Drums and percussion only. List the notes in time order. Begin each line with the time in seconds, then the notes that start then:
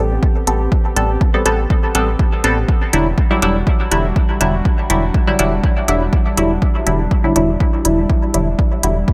0.23 kick
0.47 closed hi-hat
0.72 kick
0.96 closed hi-hat
1.21 kick
1.46 closed hi-hat
1.70 kick
1.95 closed hi-hat
2.19 kick
2.44 closed hi-hat
2.69 kick
2.93 closed hi-hat
3.18 kick
3.42 closed hi-hat
3.67 kick
3.92 closed hi-hat
4.16 kick
4.41 closed hi-hat
4.65 kick
4.90 closed hi-hat
5.14 kick
5.39 closed hi-hat
5.64 kick
5.88 closed hi-hat
6.13 kick
6.37 closed hi-hat
6.62 kick
6.87 closed hi-hat
7.11 kick
7.36 closed hi-hat
7.60 kick
7.85 closed hi-hat
8.10 kick
8.34 closed hi-hat
8.59 kick
8.83 closed hi-hat
9.08 kick